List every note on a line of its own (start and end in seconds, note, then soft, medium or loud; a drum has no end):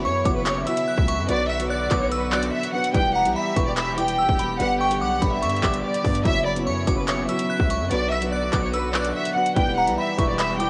0.00 1.27 C#3 medium
0.00 0.24 F#3 loud
0.00 2.91 F#3 medium
0.00 0.24 B3 medium
0.00 9.52 B3 medium
0.00 0.25 C#4 medium
0.00 0.26 E4 medium
0.00 1.27 E4 medium
0.00 0.27 F#4 loud
0.05 0.24 F#2 loud
0.05 0.34 C#5 medium
0.05 0.24 C#6 medium
0.24 0.65 F#1 loud
0.24 0.58 F#3 medium
0.24 0.58 B3 medium
0.24 0.58 C#4 medium
0.24 0.59 E4 medium
0.24 0.59 F#4 medium
0.24 0.45 D6 medium
0.24 kick loud
0.24 closed hi-hat medium
0.35 0.45 B4 medium
0.46 0.65 C#5 medium
0.46 0.66 C#6 medium
0.46 clap loud
0.46 closed hi-hat medium
0.65 1.16 F#3 medium
0.65 1.16 B3 medium
0.65 1.17 C#4 medium
0.65 1.17 E4 medium
0.65 1.17 F#4 medium
0.65 1.25 E5 medium
0.65 0.86 E6 medium
0.65 closed hi-hat medium
0.77 closed hi-hat medium
0.88 1.07 F#6 medium
0.98 1.20 C#2 loud
0.98 kick loud
1.08 1.28 C#6 loud
1.08 closed hi-hat medium
1.18 1.28 F#2 loud
1.27 1.88 B1 loud
1.27 2.93 D3 medium
1.27 1.53 F#3 medium
1.27 1.53 B3 medium
1.27 1.54 D4 medium
1.27 2.93 F#4 medium
1.27 1.54 F#4 medium
1.27 1.55 B4 loud
1.27 1.47 D5 loud
1.27 closed hi-hat medium
1.50 1.68 E5 medium
1.50 1.69 E6 medium
1.58 1.84 F#3 medium
1.58 1.84 B3 medium
1.58 1.85 D4 medium
1.58 1.85 F#4 medium
1.58 1.86 B4 medium
1.58 closed hi-hat medium
1.70 1.99 D5 medium
1.70 1.90 F#6 medium
1.89 2.50 B1 loud
1.89 2.23 F#3 medium
1.89 2.24 B3 medium
1.89 2.24 D4 medium
1.89 2.25 F#4 medium
1.89 2.25 B4 medium
1.89 2.11 D6 medium
1.89 kick loud
1.89 clap medium
1.89 closed hi-hat medium
2.01 2.10 C#5 medium
2.12 2.30 B4 medium
2.12 2.31 E6 medium
2.12 closed hi-hat medium
2.31 2.65 F#3 medium
2.31 2.65 B3 medium
2.31 2.65 D4 medium
2.31 2.66 F#4 medium
2.31 2.66 B4 medium
2.31 2.51 D5 medium
2.31 2.91 F#6 medium
2.31 clap loud
2.43 closed hi-hat medium
2.53 2.71 E5 medium
2.63 closed hi-hat medium
2.72 2.89 F#3 medium
2.72 2.90 B3 medium
2.72 2.90 D4 medium
2.72 2.91 F#4 medium
2.72 2.91 B4 medium
2.72 2.92 F#5 medium
2.84 closed hi-hat medium
2.93 3.27 E1 loud
2.93 4.58 E3 medium
2.93 3.18 G3 loud
2.93 4.58 G3 medium
2.93 3.19 B3 medium
2.93 3.19 E4 medium
2.93 6.22 G4 medium
2.93 3.20 G4 medium
2.93 3.20 B4 loud
2.93 3.13 G5 loud
2.93 kick loud
2.93 closed hi-hat medium
3.15 3.33 F#5 medium
3.15 3.35 A#5 medium
3.24 3.35 B1 loud
3.24 3.49 G3 medium
3.24 3.50 B3 medium
3.24 3.50 E4 medium
3.24 3.51 G4 medium
3.24 3.51 B4 medium
3.24 closed hi-hat medium
3.36 3.65 E5 medium
3.36 3.55 B5 medium
3.55 4.26 E1 loud
3.55 3.89 G3 medium
3.55 3.89 B3 medium
3.55 3.90 E4 medium
3.55 3.90 G4 medium
3.55 3.90 B4 medium
3.55 3.76 C#6 medium
3.55 kick loud
3.55 closed hi-hat medium
3.67 3.76 D5 medium
3.77 3.96 E5 medium
3.77 3.97 B5 medium
3.77 clap loud
3.77 closed hi-hat medium
3.96 4.47 G3 medium
3.96 4.47 B3 medium
3.96 4.48 E4 medium
3.96 4.48 G4 medium
3.96 4.48 B4 medium
3.96 4.56 G5 medium
3.96 4.17 D6 medium
3.96 closed hi-hat medium
4.08 closed hi-hat medium
4.19 4.38 E6 medium
4.29 4.59 E1 loud
4.29 kick loud
4.39 4.59 B5 medium
4.39 closed hi-hat medium
4.58 5.03 G1 loud
4.58 6.24 D3 medium
4.58 4.84 G3 medium
4.58 6.24 G3 medium
4.58 4.84 B3 medium
4.58 4.85 D4 medium
4.58 4.85 G4 loud
4.58 4.86 B4 loud
4.58 4.78 F#5 loud
4.58 closed hi-hat medium
4.80 4.99 G5 medium
4.80 5.00 C#6 loud
4.89 5.15 G3 medium
4.89 5.15 B3 medium
4.89 5.16 D4 medium
4.89 5.16 G4 medium
4.89 5.17 B4 medium
4.89 closed hi-hat medium
5.01 5.21 B1 loud
5.01 5.30 F#5 medium
5.01 5.21 D6 medium
5.20 5.44 G1 loud
5.20 5.54 G3 medium
5.20 5.55 B3 medium
5.20 5.55 D4 medium
5.20 5.55 G4 medium
5.20 5.56 B4 medium
5.20 5.41 B5 medium
5.20 kick loud
5.20 closed hi-hat medium
5.32 5.81 E5 medium
5.42 5.62 G2 loud
5.42 5.62 C#6 medium
5.42 closed hi-hat medium
5.50 closed hi-hat soft
5.56 closed hi-hat soft
5.62 5.83 G1 loud
5.62 5.96 G3 medium
5.62 5.96 B3 medium
5.62 5.97 D4 medium
5.62 5.97 G4 medium
5.62 5.97 B4 medium
5.62 6.22 D6 medium
5.62 kick loud
5.62 clap loud
5.74 closed hi-hat medium
5.84 6.23 D5 medium
5.94 closed hi-hat medium
6.03 6.25 G2 loud
6.03 6.20 G3 medium
6.03 6.21 B3 medium
6.03 6.21 D4 medium
6.03 6.22 G4 medium
6.03 6.22 B4 medium
6.03 kick loud
6.03 open hi-hat medium
6.15 closed hi-hat medium
6.24 6.68 F#1 loud
6.24 7.89 C#3 medium
6.24 6.49 F#3 loud
6.24 9.53 F#3 medium
6.24 6.50 B3 medium
6.24 6.50 C#4 medium
6.24 7.89 E4 medium
6.24 6.51 E4 loud
6.24 6.51 F#4 loud
6.24 6.44 E5 loud
6.24 kick loud
6.24 closed hi-hat medium
6.46 6.65 D5 medium
6.46 6.66 B5 medium
6.55 6.81 F#3 medium
6.55 6.81 B3 medium
6.55 6.81 C#4 medium
6.55 6.82 E4 medium
6.55 6.82 F#4 medium
6.55 closed hi-hat medium
6.67 6.86 F#2 loud
6.67 6.96 C#5 medium
6.67 6.86 C#6 loud
6.86 7.27 F#1 loud
6.86 7.20 F#3 medium
6.86 7.20 B3 medium
6.86 7.21 C#4 medium
6.86 7.21 E4 medium
6.86 7.21 F#4 medium
6.86 7.07 D6 medium
6.86 kick loud
6.86 closed hi-hat medium
6.98 7.07 B4 medium
7.08 7.27 C#5 medium
7.08 7.28 C#6 medium
7.08 clap loud
7.08 closed hi-hat medium
7.27 7.78 F#3 medium
7.27 7.78 B3 medium
7.27 7.79 C#4 medium
7.27 7.79 E4 medium
7.27 7.79 F#4 medium
7.27 7.87 E5 medium
7.27 7.49 E6 medium
7.27 closed hi-hat medium
7.39 closed hi-hat loud
7.50 7.69 F#6 medium
7.60 7.82 C#2 loud
7.60 kick loud
7.70 7.90 C#6 medium
7.70 closed hi-hat medium
7.80 7.90 F#2 loud
7.89 8.50 B1 loud
7.89 9.55 D3 medium
7.89 8.15 F#3 medium
7.89 8.15 B3 medium
7.89 8.16 D4 medium
7.89 9.55 F#4 medium
7.89 8.16 F#4 medium
7.89 8.17 B4 loud
7.89 8.09 D5 loud
7.89 closed hi-hat medium
8.12 8.30 E5 medium
8.12 8.31 E6 medium
8.20 8.46 F#3 medium
8.20 8.46 B3 medium
8.20 8.47 D4 medium
8.20 8.47 F#4 medium
8.20 8.48 B4 medium
8.20 closed hi-hat medium
8.32 8.61 D5 medium
8.32 8.52 F#6 medium
8.51 9.13 B1 loud
8.51 8.85 F#3 medium
8.51 8.86 B3 medium
8.51 8.86 D4 medium
8.51 8.87 F#4 medium
8.51 8.87 B4 medium
8.51 8.73 D6 medium
8.51 kick loud
8.51 clap medium
8.51 closed hi-hat medium
8.63 8.72 C#5 medium
8.74 8.92 B4 medium
8.74 8.93 E6 medium
8.74 closed hi-hat medium
8.93 9.27 F#3 medium
8.93 9.27 B3 medium
8.93 9.28 D4 medium
8.93 9.28 F#4 medium
8.93 9.28 B4 medium
8.93 9.13 D5 medium
8.93 9.53 F#6 medium
8.93 clap loud
9.05 closed hi-hat medium
9.15 9.33 E5 medium
9.25 closed hi-hat medium
9.34 9.51 F#3 medium
9.34 9.52 B3 medium
9.34 9.52 D4 medium
9.34 9.53 F#4 medium
9.34 9.53 B4 medium
9.34 9.54 F#5 medium
9.46 closed hi-hat medium
9.55 9.89 E1 loud
9.55 10.70 E3 medium
9.55 9.80 G3 loud
9.55 10.70 G3 medium
9.55 9.81 B3 loud
9.55 10.70 B3 medium
9.55 9.81 E4 medium
9.55 10.70 G4 medium
9.55 9.82 G4 medium
9.55 9.82 B4 loud
9.55 9.75 G5 loud
9.55 kick loud
9.55 closed hi-hat medium
9.77 9.95 F#5 medium
9.77 9.97 A#5 medium
9.86 9.97 B1 loud
9.86 10.12 G3 medium
9.86 10.12 B3 medium
9.86 10.12 E4 medium
9.86 10.13 G4 medium
9.86 10.13 B4 medium
9.86 closed hi-hat medium
9.98 10.27 E5 medium
9.98 10.18 B5 medium
10.17 10.70 E1 loud
10.17 10.51 G3 medium
10.17 10.51 B3 medium
10.17 10.52 E4 medium
10.17 10.52 G4 medium
10.17 10.52 B4 loud
10.17 10.38 C#6 medium
10.17 kick loud
10.17 closed hi-hat medium
10.29 10.38 D5 medium
10.39 10.58 E5 medium
10.39 10.59 B5 medium
10.39 clap loud
10.39 closed hi-hat medium
10.58 10.70 G3 medium
10.58 10.70 B3 medium
10.58 10.70 E4 medium
10.58 10.70 G4 medium
10.58 10.70 B4 medium
10.58 10.70 G5 medium
10.58 10.70 D6 medium
10.58 closed hi-hat medium